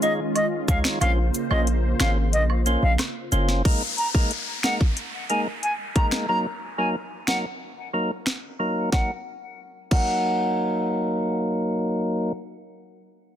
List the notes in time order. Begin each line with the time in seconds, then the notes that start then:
Already playing: D#3 G#3 C#4 F4
0.02 G#3 D#4 F4 C#5 D#5, closed hi-hat, cabasa
0.35 D#5, closed hi-hat, high woodblock
0.68 C#2 G#3 D#4 F4 C#5 F5, kick, closed hi-hat, cabasa
0.84 finger snap, snare
1.01 A#1 C#3 A#3 C#4 F4 C5 F5, closed hi-hat, high woodblock
1.34 closed hi-hat, cabasa
1.51 A#1 A#3 C#4 F4 C5 D#5, high woodblock
1.67 closed hi-hat
2.00 G#1 A#3 C#4 F4 C5 F5, finger snap, snare, closed hi-hat, cabasa, high woodblock
2.33 A#1 D#5, closed hi-hat
2.50 high woodblock
2.66 A#3 C#4 F4 C5, closed hi-hat, cabasa
2.82 A#1 F5
2.98 finger snap, cross-stick, snare, closed hi-hat, high woodblock
3.32 F#1 A#3 C#4 F4 C5, closed hi-hat, cabasa
3.49 snare
3.65 G#3 A#3 D#4 A#4, kick, closed hi-hat, downlifter
3.98 A#5, closed hi-hat
4.14 G#3 A#3 D#4 A#4, kick
4.31 closed hi-hat
4.63 G#3 A#3 D#4 A#4 F#5, finger snap, snare, closed hi-hat
4.81 kick
4.97 closed hi-hat
5.30 G#3 A#3 D#4 A#4 G#5, closed hi-hat
5.63 G#5, closed hi-hat
5.96 G#3 A#3 D#4 A#4 A#5, kick, closed hi-hat
6.11 finger snap, snare
6.29 F#3 A#3 D#4 A#4 A#5
6.78 F#3 A#3 D#4 A#4 G#5
7.27 F#3 A#3 D#4 A#4 F#5, finger snap, snare
7.93 F#3 A#3 D#4 A#4
8.26 finger snap, snare
8.59 F#3 A#3 D#4 A#4
8.92 F#3 A#3 D#4 A#4 F#5, kick, snare
9.91 F#3 A#3 D#4 A#4 F#5, kick, crash